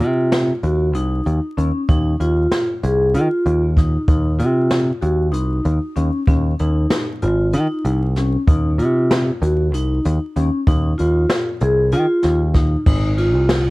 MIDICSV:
0, 0, Header, 1, 4, 480
1, 0, Start_track
1, 0, Tempo, 626959
1, 1449, Time_signature, 7, 3, 24, 8
1, 10490, End_track
2, 0, Start_track
2, 0, Title_t, "Vibraphone"
2, 0, Program_c, 0, 11
2, 6, Note_on_c, 0, 65, 70
2, 350, Note_off_c, 0, 65, 0
2, 489, Note_on_c, 0, 66, 77
2, 660, Note_off_c, 0, 66, 0
2, 730, Note_on_c, 0, 63, 82
2, 1072, Note_off_c, 0, 63, 0
2, 1206, Note_on_c, 0, 61, 75
2, 1378, Note_off_c, 0, 61, 0
2, 1445, Note_on_c, 0, 63, 89
2, 1618, Note_off_c, 0, 63, 0
2, 1688, Note_on_c, 0, 65, 72
2, 2031, Note_off_c, 0, 65, 0
2, 2170, Note_on_c, 0, 68, 65
2, 2341, Note_off_c, 0, 68, 0
2, 2414, Note_on_c, 0, 65, 81
2, 2755, Note_off_c, 0, 65, 0
2, 2890, Note_on_c, 0, 63, 73
2, 3061, Note_off_c, 0, 63, 0
2, 3129, Note_on_c, 0, 63, 86
2, 3300, Note_off_c, 0, 63, 0
2, 3361, Note_on_c, 0, 65, 69
2, 3707, Note_off_c, 0, 65, 0
2, 3840, Note_on_c, 0, 66, 70
2, 4015, Note_off_c, 0, 66, 0
2, 4074, Note_on_c, 0, 63, 81
2, 4422, Note_off_c, 0, 63, 0
2, 4564, Note_on_c, 0, 61, 73
2, 4737, Note_off_c, 0, 61, 0
2, 4812, Note_on_c, 0, 61, 87
2, 4983, Note_off_c, 0, 61, 0
2, 5053, Note_on_c, 0, 63, 75
2, 5394, Note_off_c, 0, 63, 0
2, 5529, Note_on_c, 0, 65, 77
2, 5701, Note_off_c, 0, 65, 0
2, 5775, Note_on_c, 0, 63, 84
2, 6116, Note_off_c, 0, 63, 0
2, 6251, Note_on_c, 0, 61, 74
2, 6422, Note_off_c, 0, 61, 0
2, 6491, Note_on_c, 0, 63, 95
2, 6662, Note_off_c, 0, 63, 0
2, 6731, Note_on_c, 0, 65, 76
2, 7073, Note_off_c, 0, 65, 0
2, 7214, Note_on_c, 0, 66, 70
2, 7384, Note_off_c, 0, 66, 0
2, 7455, Note_on_c, 0, 63, 88
2, 7796, Note_off_c, 0, 63, 0
2, 7931, Note_on_c, 0, 61, 78
2, 8102, Note_off_c, 0, 61, 0
2, 8173, Note_on_c, 0, 63, 91
2, 8343, Note_off_c, 0, 63, 0
2, 8405, Note_on_c, 0, 65, 73
2, 8749, Note_off_c, 0, 65, 0
2, 8891, Note_on_c, 0, 68, 75
2, 9062, Note_off_c, 0, 68, 0
2, 9134, Note_on_c, 0, 65, 90
2, 9475, Note_off_c, 0, 65, 0
2, 9606, Note_on_c, 0, 63, 77
2, 9778, Note_off_c, 0, 63, 0
2, 9850, Note_on_c, 0, 63, 92
2, 10021, Note_off_c, 0, 63, 0
2, 10086, Note_on_c, 0, 65, 74
2, 10429, Note_off_c, 0, 65, 0
2, 10490, End_track
3, 0, Start_track
3, 0, Title_t, "Picked electric bass"
3, 0, Program_c, 1, 34
3, 3, Note_on_c, 1, 48, 89
3, 395, Note_off_c, 1, 48, 0
3, 485, Note_on_c, 1, 39, 79
3, 727, Note_off_c, 1, 39, 0
3, 727, Note_on_c, 1, 36, 101
3, 922, Note_off_c, 1, 36, 0
3, 967, Note_on_c, 1, 39, 93
3, 1065, Note_off_c, 1, 39, 0
3, 1207, Note_on_c, 1, 39, 84
3, 1305, Note_off_c, 1, 39, 0
3, 1448, Note_on_c, 1, 39, 87
3, 1643, Note_off_c, 1, 39, 0
3, 1684, Note_on_c, 1, 39, 77
3, 1881, Note_off_c, 1, 39, 0
3, 2168, Note_on_c, 1, 36, 91
3, 2406, Note_on_c, 1, 51, 88
3, 2417, Note_off_c, 1, 36, 0
3, 2504, Note_off_c, 1, 51, 0
3, 2646, Note_on_c, 1, 39, 87
3, 3037, Note_off_c, 1, 39, 0
3, 3125, Note_on_c, 1, 39, 87
3, 3366, Note_on_c, 1, 48, 90
3, 3378, Note_off_c, 1, 39, 0
3, 3757, Note_off_c, 1, 48, 0
3, 3848, Note_on_c, 1, 39, 80
3, 4089, Note_off_c, 1, 39, 0
3, 4089, Note_on_c, 1, 36, 98
3, 4284, Note_off_c, 1, 36, 0
3, 4327, Note_on_c, 1, 39, 88
3, 4426, Note_off_c, 1, 39, 0
3, 4569, Note_on_c, 1, 39, 86
3, 4666, Note_off_c, 1, 39, 0
3, 4807, Note_on_c, 1, 39, 94
3, 5003, Note_off_c, 1, 39, 0
3, 5054, Note_on_c, 1, 39, 77
3, 5247, Note_off_c, 1, 39, 0
3, 5532, Note_on_c, 1, 32, 94
3, 5768, Note_on_c, 1, 51, 91
3, 5780, Note_off_c, 1, 32, 0
3, 5866, Note_off_c, 1, 51, 0
3, 6008, Note_on_c, 1, 36, 92
3, 6398, Note_off_c, 1, 36, 0
3, 6487, Note_on_c, 1, 39, 92
3, 6724, Note_on_c, 1, 48, 86
3, 6735, Note_off_c, 1, 39, 0
3, 7115, Note_off_c, 1, 48, 0
3, 7206, Note_on_c, 1, 39, 88
3, 7449, Note_off_c, 1, 39, 0
3, 7449, Note_on_c, 1, 36, 101
3, 7644, Note_off_c, 1, 36, 0
3, 7696, Note_on_c, 1, 39, 96
3, 7791, Note_off_c, 1, 39, 0
3, 7933, Note_on_c, 1, 39, 89
3, 8029, Note_off_c, 1, 39, 0
3, 8170, Note_on_c, 1, 39, 89
3, 8364, Note_off_c, 1, 39, 0
3, 8419, Note_on_c, 1, 39, 82
3, 8610, Note_off_c, 1, 39, 0
3, 8893, Note_on_c, 1, 36, 97
3, 9134, Note_on_c, 1, 51, 90
3, 9145, Note_off_c, 1, 36, 0
3, 9229, Note_off_c, 1, 51, 0
3, 9374, Note_on_c, 1, 39, 94
3, 9761, Note_off_c, 1, 39, 0
3, 9850, Note_on_c, 1, 32, 90
3, 10213, Note_off_c, 1, 32, 0
3, 10213, Note_on_c, 1, 36, 81
3, 10490, Note_off_c, 1, 36, 0
3, 10490, End_track
4, 0, Start_track
4, 0, Title_t, "Drums"
4, 2, Note_on_c, 9, 42, 54
4, 78, Note_off_c, 9, 42, 0
4, 245, Note_on_c, 9, 38, 108
4, 245, Note_on_c, 9, 42, 79
4, 322, Note_off_c, 9, 38, 0
4, 322, Note_off_c, 9, 42, 0
4, 482, Note_on_c, 9, 42, 55
4, 558, Note_off_c, 9, 42, 0
4, 724, Note_on_c, 9, 42, 73
4, 801, Note_off_c, 9, 42, 0
4, 969, Note_on_c, 9, 42, 57
4, 1046, Note_off_c, 9, 42, 0
4, 1210, Note_on_c, 9, 42, 56
4, 1286, Note_off_c, 9, 42, 0
4, 1446, Note_on_c, 9, 36, 99
4, 1446, Note_on_c, 9, 42, 75
4, 1522, Note_off_c, 9, 36, 0
4, 1522, Note_off_c, 9, 42, 0
4, 1687, Note_on_c, 9, 42, 61
4, 1763, Note_off_c, 9, 42, 0
4, 1925, Note_on_c, 9, 38, 108
4, 1925, Note_on_c, 9, 42, 82
4, 2001, Note_off_c, 9, 38, 0
4, 2001, Note_off_c, 9, 42, 0
4, 2167, Note_on_c, 9, 42, 62
4, 2244, Note_off_c, 9, 42, 0
4, 2404, Note_on_c, 9, 42, 85
4, 2481, Note_off_c, 9, 42, 0
4, 2646, Note_on_c, 9, 42, 62
4, 2723, Note_off_c, 9, 42, 0
4, 2885, Note_on_c, 9, 36, 73
4, 2889, Note_on_c, 9, 38, 32
4, 2889, Note_on_c, 9, 42, 57
4, 2961, Note_off_c, 9, 36, 0
4, 2965, Note_off_c, 9, 38, 0
4, 2965, Note_off_c, 9, 42, 0
4, 3123, Note_on_c, 9, 42, 82
4, 3125, Note_on_c, 9, 36, 104
4, 3200, Note_off_c, 9, 42, 0
4, 3202, Note_off_c, 9, 36, 0
4, 3366, Note_on_c, 9, 42, 63
4, 3442, Note_off_c, 9, 42, 0
4, 3605, Note_on_c, 9, 38, 106
4, 3605, Note_on_c, 9, 42, 77
4, 3681, Note_off_c, 9, 38, 0
4, 3681, Note_off_c, 9, 42, 0
4, 3844, Note_on_c, 9, 42, 57
4, 3921, Note_off_c, 9, 42, 0
4, 4085, Note_on_c, 9, 42, 77
4, 4161, Note_off_c, 9, 42, 0
4, 4326, Note_on_c, 9, 42, 56
4, 4402, Note_off_c, 9, 42, 0
4, 4565, Note_on_c, 9, 42, 58
4, 4641, Note_off_c, 9, 42, 0
4, 4803, Note_on_c, 9, 42, 76
4, 4805, Note_on_c, 9, 36, 103
4, 4880, Note_off_c, 9, 42, 0
4, 4881, Note_off_c, 9, 36, 0
4, 5047, Note_on_c, 9, 42, 57
4, 5123, Note_off_c, 9, 42, 0
4, 5284, Note_on_c, 9, 38, 110
4, 5284, Note_on_c, 9, 42, 84
4, 5361, Note_off_c, 9, 38, 0
4, 5361, Note_off_c, 9, 42, 0
4, 5527, Note_on_c, 9, 42, 64
4, 5603, Note_off_c, 9, 42, 0
4, 5764, Note_on_c, 9, 42, 76
4, 5841, Note_off_c, 9, 42, 0
4, 6007, Note_on_c, 9, 42, 59
4, 6084, Note_off_c, 9, 42, 0
4, 6248, Note_on_c, 9, 38, 35
4, 6248, Note_on_c, 9, 42, 57
4, 6325, Note_off_c, 9, 38, 0
4, 6325, Note_off_c, 9, 42, 0
4, 6489, Note_on_c, 9, 36, 104
4, 6489, Note_on_c, 9, 42, 81
4, 6565, Note_off_c, 9, 42, 0
4, 6566, Note_off_c, 9, 36, 0
4, 6729, Note_on_c, 9, 42, 64
4, 6806, Note_off_c, 9, 42, 0
4, 6971, Note_on_c, 9, 38, 117
4, 6971, Note_on_c, 9, 42, 93
4, 7047, Note_off_c, 9, 38, 0
4, 7047, Note_off_c, 9, 42, 0
4, 7213, Note_on_c, 9, 42, 63
4, 7290, Note_off_c, 9, 42, 0
4, 7453, Note_on_c, 9, 42, 79
4, 7530, Note_off_c, 9, 42, 0
4, 7693, Note_on_c, 9, 42, 68
4, 7769, Note_off_c, 9, 42, 0
4, 7931, Note_on_c, 9, 42, 60
4, 8007, Note_off_c, 9, 42, 0
4, 8166, Note_on_c, 9, 42, 81
4, 8167, Note_on_c, 9, 36, 99
4, 8242, Note_off_c, 9, 42, 0
4, 8244, Note_off_c, 9, 36, 0
4, 8408, Note_on_c, 9, 42, 63
4, 8485, Note_off_c, 9, 42, 0
4, 8647, Note_on_c, 9, 38, 117
4, 8647, Note_on_c, 9, 42, 81
4, 8723, Note_off_c, 9, 38, 0
4, 8723, Note_off_c, 9, 42, 0
4, 8885, Note_on_c, 9, 42, 59
4, 8961, Note_off_c, 9, 42, 0
4, 9127, Note_on_c, 9, 42, 75
4, 9203, Note_off_c, 9, 42, 0
4, 9363, Note_on_c, 9, 38, 35
4, 9363, Note_on_c, 9, 42, 62
4, 9440, Note_off_c, 9, 38, 0
4, 9440, Note_off_c, 9, 42, 0
4, 9603, Note_on_c, 9, 38, 33
4, 9603, Note_on_c, 9, 42, 59
4, 9607, Note_on_c, 9, 36, 78
4, 9679, Note_off_c, 9, 38, 0
4, 9679, Note_off_c, 9, 42, 0
4, 9683, Note_off_c, 9, 36, 0
4, 9847, Note_on_c, 9, 36, 102
4, 9848, Note_on_c, 9, 49, 97
4, 9924, Note_off_c, 9, 36, 0
4, 9924, Note_off_c, 9, 49, 0
4, 10088, Note_on_c, 9, 51, 60
4, 10164, Note_off_c, 9, 51, 0
4, 10327, Note_on_c, 9, 38, 112
4, 10327, Note_on_c, 9, 51, 88
4, 10404, Note_off_c, 9, 38, 0
4, 10404, Note_off_c, 9, 51, 0
4, 10490, End_track
0, 0, End_of_file